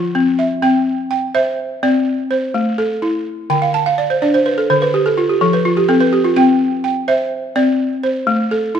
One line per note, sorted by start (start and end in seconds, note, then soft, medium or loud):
0.00 0.15 F3 medium
0.00 0.63 F4 medium
0.00 0.15 C5 medium
0.15 0.61 C4 medium
0.39 0.87 E5 medium
0.62 1.11 C4 medium
0.62 1.09 G5 medium
1.11 1.83 G5 medium
1.35 1.83 C5 medium
1.35 2.07 E5 medium
1.83 2.07 C4 medium
1.83 2.31 D5 medium
2.31 3.02 C5 medium
2.54 3.02 A3 medium
2.78 3.50 A4 medium
3.02 3.50 E4 medium
3.50 3.98 D3 medium
3.50 3.72 G5 medium
3.62 3.84 F5 medium
3.74 3.96 A5 medium
3.86 4.08 F5 medium
3.98 4.20 D5 medium
4.10 4.32 C5 medium
4.22 4.70 D4 medium
4.22 4.44 D5 medium
4.34 4.56 C5 medium
4.46 4.68 B4 medium
4.58 4.80 A4 medium
4.70 4.94 D3 medium
4.70 4.92 C5 medium
4.82 5.04 B4 medium
4.94 5.16 G4 medium
5.06 5.28 A4 medium
5.18 5.40 F4 medium
5.29 5.52 G4 medium
5.41 5.89 F3 medium
5.41 5.63 A4 medium
5.53 5.75 B4 medium
5.65 5.87 F4 medium
5.77 5.99 G4 medium
5.88 6.35 C4 medium
5.88 6.11 A4 medium
6.00 6.23 B4 medium
6.13 6.35 G4 medium
6.24 6.47 F4 medium
6.36 6.84 C4 medium
6.36 6.83 G5 medium
6.84 7.56 G5 medium
7.08 7.56 C5 medium
7.08 7.79 E5 medium
7.56 7.80 C4 medium
7.56 8.03 D5 medium
8.03 8.75 C5 medium
8.27 8.75 A3 medium
8.51 8.80 A4 medium
8.75 8.80 E4 medium